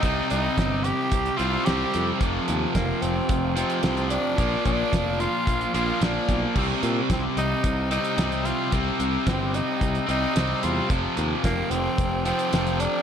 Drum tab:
CC |----------------|----------------|----------------|x---------------|
HH |x-x-x-x-xxx-x-x-|x-x-x-x-x-xxxxx-|x-x-x-x-xxx-x-x-|--x-x-x-x-xxxxx-|
SD |----o-------o---|----o-o-----o---|----o-------o---|----o-o-----o---|
BD |o---o---o-------|o---o---o-------|o-o-o---o-----o-|o---o---o-------|

CC |----------------|----------------|
HH |x-x-x-x-xxx-x-x-|x-x-x-x-x-xxxxx-|
SD |----o-------o---|----o-------o---|
BD |o---o---o-------|o---o---o-------|